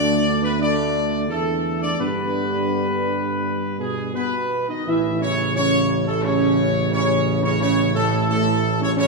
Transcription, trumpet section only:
Already playing: D5
0.43 B4
0.60 D5
1.29 A4
1.82 D5
2.00 B4
3.79 G#4
4.15 B4
4.69 D#5
4.87 E5
5.22 C#5
5.55 C#5
6.07 A4
6.23 C#5
6.92 C#5
7.44 C#5
7.61 C#5
7.95 A4
8.30 A4
8.82 C#5
8.98 C#5

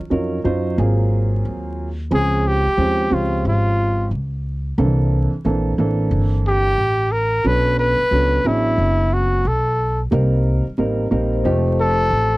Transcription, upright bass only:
0.11 F2
0.45 F#2
0.78 G#1
1.45 D#2
2.11 C#2
2.66 muted upright bass stroke
2.78 D#2
3.11 C#2
3.45 G#1
4.11 C#2
4.78 C2
5.33 muted upright bass stroke
5.45 A#1
5.78 A1
6.11 G1
6.78 A1
7.44 B1
8.00 muted upright bass stroke
8.11 C#2
8.45 A1
8.78 F#1
9.45 B1
10.12 C2
10.67 muted upright bass stroke
10.78 A1
11.11 A#1
11.45 F1
12.11 A1

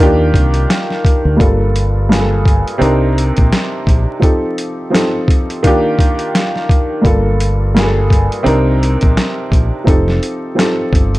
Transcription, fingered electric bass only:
0.00 D#2
0.34 C2
1.25 D2
1.40 G1
2.81 C2
3.38 A#1
3.87 A#1
7.05 G1
8.46 C2
9.03 A#1
9.52 A#1
9.87 F1
10.93 G1

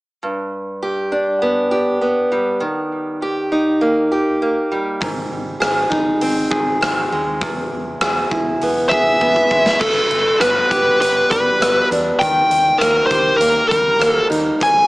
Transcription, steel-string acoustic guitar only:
0.23 G2
0.82 G4
1.12 D4
1.42 B3
1.71 G4
2.01 B3
2.32 G3
2.60 D#3
3.22 G4
3.52 D#4
3.81 A#3
4.12 G4
4.42 A#3
4.72 G3
5.01 G#2
5.60 G#4
5.90 D#4
6.22 C4
6.51 G#4
6.81 C4
7.12 G#3
7.42 E2
8.01 G#4
8.32 E4
8.63 B3
8.93 G#4
9.21 B3
9.51 G#3
9.80 G2
10.41 B3
10.71 G4
11.00 B3
11.30 G3
11.61 B3
11.91 D4
12.21 D#3
12.81 A#3
13.12 G4
13.40 A#3
13.71 G3
13.99 A#3
14.30 D#4
14.60 G#2

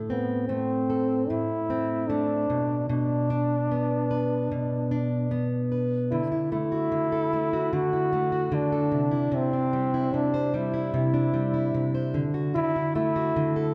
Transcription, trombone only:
0.10 B3
0.48 C4
1.29 E4
2.09 D4
2.90 D4
6.11 E4
6.53 E4
7.74 F#4
8.54 D4
9.36 C4
10.15 D4
10.57 E4
12.55 E4
12.96 E4

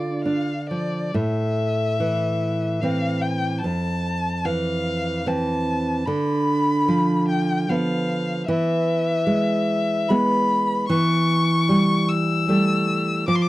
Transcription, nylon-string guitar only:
Already playing: D3 F4
0.25 D4
0.71 F3
1.14 A2
2.00 E3
2.83 E3 C4
3.64 F2
4.45 E3
5.26 E3 C4
6.07 D3
6.88 F3
7.69 F3 B3
8.48 E3
9.27 G#3
10.10 G#3 B3
10.89 E3
11.69 G3
12.49 G3 A3
13.28 F3

